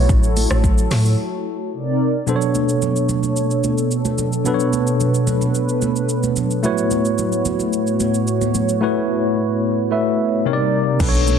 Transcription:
0.00 1.69 A3 medium
0.00 1.69 E4 medium
0.00 1.69 F#4 medium
0.00 1.69 C#5 medium
0.09 0.47 A1 loud
0.09 1.71 A4 medium
0.09 kick loud
0.09 low conga medium
0.09 shaker medium
0.23 shaker medium
0.37 open hi-hat medium
0.37 high conga medium
0.37 shaker medium
0.51 0.87 A1 medium
0.51 cross-stick loud
0.51 shaker medium
0.64 kick loud
0.64 low conga medium
0.64 shaker medium
0.78 shaker medium
0.91 1.16 A2 loud
0.91 snare medium
0.91 open hi-hat medium
0.91 high conga medium
0.91 low conga medium
0.91 shaker loud
1.05 high conga medium
1.05 shaker medium
1.73 2.27 C3 medium
1.73 2.27 C4 medium
1.73 2.27 D#4 medium
1.73 2.27 A#4 medium
1.73 2.27 D5 medium
2.26 4.41 B2 medium
2.26 6.60 B2 medium
2.26 10.41 B3 medium
2.26 4.41 B3 medium
2.26 6.60 D4 medium
2.26 4.42 D4 medium
2.26 6.60 A4 medium
2.26 4.42 A4 medium
2.26 2.35 C5 medium
2.26 4.43 C#5 medium
2.26 low conga medium
2.26 shaker medium
2.36 4.46 C#5 medium
2.42 shaker soft
2.55 high conga medium
2.55 shaker medium
2.69 shaker medium
2.82 low conga medium
2.82 shaker medium
2.96 shaker medium
3.09 high conga medium
3.09 low conga medium
3.09 shaker medium
3.23 high conga medium
3.23 shaker soft
3.37 shaker medium
3.51 shaker soft
3.64 high conga medium
3.64 shaker medium
3.78 shaker medium
3.91 shaker medium
4.05 high conga medium
4.05 shaker medium
4.18 high conga soft
4.18 low conga medium
4.18 shaker medium
4.33 shaker soft
4.45 6.59 B2 medium
4.45 6.60 B3 medium
4.45 6.60 D4 medium
4.45 6.60 A4 medium
4.45 6.61 B4 medium
4.45 4.53 B4 medium
4.45 low conga medium
4.45 shaker medium
4.54 6.64 C#5 medium
4.60 shaker soft
4.73 high conga medium
4.73 shaker medium
4.87 shaker medium
5.00 low conga medium
5.00 shaker medium
5.14 shaker medium
5.27 high conga medium
5.27 low conga medium
5.27 shaker loud
5.41 high conga medium
5.41 shaker soft
5.55 shaker medium
5.69 shaker soft
5.82 high conga medium
5.82 shaker medium
5.96 shaker medium
6.09 shaker medium
6.23 high conga medium
6.23 shaker medium
6.36 high conga soft
6.36 low conga medium
6.36 shaker medium
6.51 shaker soft
6.63 10.42 A2 medium
6.63 8.77 A3 medium
6.63 10.42 A3 medium
6.63 8.78 E4 medium
6.63 10.42 F#4 medium
6.63 8.78 F#4 medium
6.63 8.79 B4 medium
6.63 10.42 C#5 medium
6.63 8.79 C#5 medium
6.63 low conga medium
6.63 shaker medium
6.78 shaker medium
6.91 high conga medium
6.91 shaker medium
7.05 shaker medium
7.18 low conga medium
7.18 shaker medium
7.32 shaker medium
7.45 high conga medium
7.45 low conga medium
7.45 shaker loud
7.59 high conga medium
7.59 shaker soft
7.73 shaker medium
7.87 shaker soft
8.00 high conga medium
8.00 shaker medium
8.14 shaker medium
8.27 shaker medium
8.41 high conga medium
8.41 shaker medium
8.55 high conga soft
8.55 low conga medium
8.55 shaker medium
8.69 shaker medium
8.81 9.88 A3 medium
8.81 9.89 E4 medium
8.81 9.89 F#4 medium
8.81 9.89 B4 medium
8.81 9.90 C#5 medium
9.91 10.45 A3 medium
9.91 10.46 E4 soft
9.91 10.46 F#4 medium
9.91 10.46 B4 soft
9.91 10.46 E5 medium
10.45 11.00 C3 medium
10.45 10.99 C3 medium
10.45 11.00 G3 medium
10.45 10.99 A#3 medium
10.45 11.00 C4 medium
10.45 11.00 D#4 medium
10.45 11.00 A#4 medium
10.45 10.53 C#5 medium
10.45 10.99 D5 medium
10.53 11.04 D5 medium
10.99 11.38 B1 loud
10.99 11.39 B2 medium
10.99 11.39 A3 medium
10.99 11.39 B3 medium
10.99 11.39 D4 medium
10.99 11.39 A4 medium
10.99 11.08 B4 medium
10.99 kick loud
10.99 crash medium
10.99 low conga medium
10.99 shaker medium
11.09 11.39 C#5 medium
11.14 shaker medium
11.27 high conga medium
11.27 shaker medium

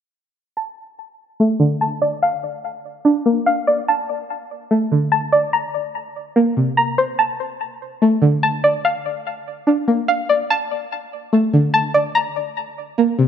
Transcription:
0.57 1.80 A5 loud
1.40 2.22 A3 medium
1.60 2.22 D3 medium
1.81 2.22 A5 loud
2.02 2.22 D5 medium
2.23 3.45 F5 loud
3.05 3.88 D4 medium
3.26 3.88 A#3 medium
3.46 3.88 F5 loud
3.67 3.88 D5 medium
3.88 5.11 A5 loud
4.71 5.53 A3 medium
4.92 5.53 D3 medium
5.12 5.53 A5 loud
5.32 5.53 D5 medium
5.53 6.76 A#5 loud
6.36 7.19 A#3 medium
6.57 7.19 C3 medium
6.77 7.19 A#5 loud
6.98 7.19 C5 medium
7.19 8.42 A5 loud
8.02 8.84 A3 medium
8.22 8.84 D3 medium
8.43 8.84 A5 loud
8.64 8.84 D5 medium
8.85 10.07 F5 loud
9.67 10.50 D4 medium
9.88 10.50 A#3 medium
10.08 10.50 F5 loud
10.29 10.50 D5 medium
10.50 11.73 A5 loud
11.33 12.15 A3 medium
11.53 12.15 D3 medium
11.74 12.15 A5 loud
11.94 12.15 D5 medium
12.15 13.28 A#5 loud
12.98 13.28 A#3 medium
13.19 13.28 C3 medium

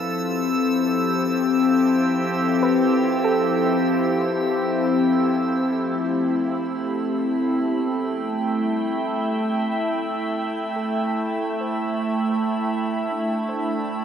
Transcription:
0.00 5.85 F3 medium
0.00 7.47 C4 medium
0.00 14.05 E4 medium
0.00 8.04 G4 medium
0.00 8.15 A4 medium
0.00 5.87 E6 medium
2.63 5.16 B4 medium
3.24 5.78 A4 medium
5.83 7.61 A3 medium
5.83 14.05 A3 medium
5.83 14.05 B5 medium
6.48 9.02 G4 medium
6.77 13.79 G5 medium
7.15 14.05 E5 medium
7.59 7.68 C4 medium
7.67 8.35 B3 loud
8.35 8.61 A3 medium
8.59 9.26 G3 medium
10.76 12.31 A4 medium
11.60 13.47 C5 medium
12.32 14.05 A4 soft
13.11 14.05 D4 loud
13.49 14.05 C5 medium
13.49 14.05 A5 medium

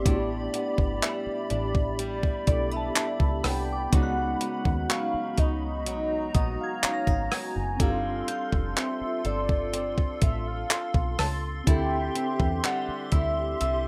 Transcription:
0.00 1.02 G3 medium
0.00 2.42 B3 medium
0.00 0.15 C4 medium
0.00 3.89 G4 medium
0.00 2.48 D5 loud
0.05 0.47 A1 loud
0.05 3.93 A2 medium
0.05 2.43 D4 medium
0.05 1.49 D4 medium
0.05 2.44 E4 medium
0.05 3.89 D5 medium
0.05 5.82 B5 medium
0.05 kick loud
0.05 closed hi-hat medium
0.09 0.14 F#4 medium
0.16 2.49 G4 medium
0.54 2.47 B3 medium
0.54 closed hi-hat medium
0.78 0.99 G1 loud
0.78 kick loud
1.02 1.98 G3 medium
1.02 2.88 E5 medium
1.02 clap loud
1.02 closed hi-hat medium
1.27 muted picked electric bass stroke soft
1.50 2.34 A1 medium
1.50 2.94 D4 medium
1.50 closed hi-hat medium
1.75 kick loud
1.99 4.02 G3 medium
1.99 closed hi-hat medium
2.23 kick loud
2.46 2.89 B1 medium
2.46 2.71 A3 medium
2.46 3.89 B3 soft
2.46 3.93 D4 soft
2.46 3.93 E4 soft
2.46 3.94 A4 medium
2.46 4.33 D5 medium
2.46 2.71 D5 medium
2.46 kick loud
2.46 closed hi-hat medium
2.71 3.43 B3 medium
2.71 3.47 E5 medium
2.76 2.94 A5 medium
2.95 3.93 D4 medium
2.95 4.37 A5 medium
2.95 clap loud
2.95 closed hi-hat medium
3.20 3.41 C#2 medium
3.20 kick medium
3.43 3.86 C2 medium
3.43 4.40 B3 medium
3.43 3.93 G5 loud
3.43 4.37 B5 medium
3.43 cross-stick medium
3.43 open hi-hat medium
3.73 4.63 D6 medium
3.90 4.34 C#2 loud
3.90 7.80 C#3 medium
3.90 7.75 B3 medium
3.90 7.76 D#4 medium
3.90 5.37 D#4 medium
3.90 7.76 F#4 medium
3.90 4.92 F#5 loud
3.90 kick loud
3.90 closed hi-hat medium
3.94 7.78 G#3 medium
3.94 7.77 F#4 medium
4.03 4.91 F#6 medium
4.41 6.34 B3 medium
4.41 closed hi-hat medium
4.65 4.86 D#2 medium
4.65 kick loud
4.89 5.85 F#3 medium
4.89 5.41 F5 loud
4.89 6.75 C#6 medium
4.89 clap loud
4.89 closed hi-hat medium
5.14 muted picked electric bass stroke soft
5.38 5.87 C#2 medium
5.38 6.83 D#4 medium
5.38 6.35 D#5 loud
5.38 kick medium
5.38 closed hi-hat medium
5.86 6.28 B1 medium
5.86 7.79 F#3 medium
5.86 7.78 A#5 medium
5.86 closed hi-hat medium
6.35 6.56 A#1 medium
6.35 7.30 B3 medium
6.35 6.58 D#5 loud
6.35 8.20 D#6 medium
6.35 kick loud
6.35 closed hi-hat medium
6.61 7.34 F5 loud
6.61 7.30 G#6 medium
6.83 7.07 C#4 medium
6.83 muted picked electric bass stroke soft
6.83 clap loud
6.83 closed hi-hat medium
6.93 8.73 A#6 medium
7.07 7.28 G#1 medium
7.07 7.90 D#4 medium
7.07 kick medium
7.31 7.90 B3 medium
7.31 7.83 G#5 loud
7.31 8.24 G#6 medium
7.31 cross-stick loud
7.31 open hi-hat medium
7.56 7.77 F#1 medium
7.77 8.22 G1 loud
7.77 11.67 G3 medium
7.77 11.62 C4 medium
7.77 11.63 D4 medium
7.77 11.63 F4 medium
7.77 11.63 A4 medium
7.77 9.24 A4 medium
7.77 13.88 C6 medium
7.77 kick loud
7.77 closed hi-hat medium
7.81 11.64 F4 medium
7.81 7.88 G4 medium
7.81 8.80 F5 loud
7.90 11.68 A4 medium
8.28 10.20 F4 medium
8.28 10.13 G6 medium
8.28 closed hi-hat medium
8.52 8.73 F1 medium
8.52 kick medium
8.76 9.73 C4 medium
8.76 9.26 E5 loud
8.76 clap loud
8.76 closed hi-hat medium
9.01 muted picked electric bass stroke medium
9.25 10.08 G1 loud
9.25 10.69 A4 medium
9.25 10.18 D5 loud
9.25 closed hi-hat medium
9.49 kick medium
9.73 12.15 C4 medium
9.73 closed hi-hat medium
9.98 kick medium
10.21 10.63 A1 medium
10.21 11.17 F4 medium
10.21 10.49 E5 loud
10.21 kick loud
10.21 closed hi-hat medium
10.47 11.19 F5 loud
10.70 12.67 A4 medium
10.70 clap loud
10.70 closed hi-hat medium
10.94 11.15 B1 medium
10.94 kick loud
11.18 11.61 C#2 medium
11.18 11.67 F4 medium
11.18 11.33 A5 loud
11.18 12.11 A6 medium
11.18 cross-stick loud
11.18 open hi-hat medium
11.64 12.09 D2 loud
11.64 13.88 D3 medium
11.64 13.88 C4 medium
11.64 13.88 E4 medium
11.64 13.12 E4 medium
11.64 13.88 G4 medium
11.64 13.88 E5 medium
11.64 12.66 G5 loud
11.64 kick loud
11.64 closed hi-hat medium
11.69 13.88 G4 medium
11.69 13.88 A4 medium
12.15 13.88 C4 medium
12.15 closed hi-hat medium
12.40 12.60 E2 medium
12.40 kick medium
12.64 13.59 G3 medium
12.64 13.13 F#5 loud
12.64 clap loud
12.64 closed hi-hat medium
12.89 muted picked electric bass stroke soft
13.12 13.54 D2 loud
13.12 13.88 E4 medium
13.12 13.88 E5 loud
13.12 13.60 E6 medium
13.12 kick loud
13.12 closed hi-hat medium
13.61 13.88 C2 medium
13.61 13.88 G3 medium
13.61 13.88 E6 medium
13.61 closed hi-hat medium

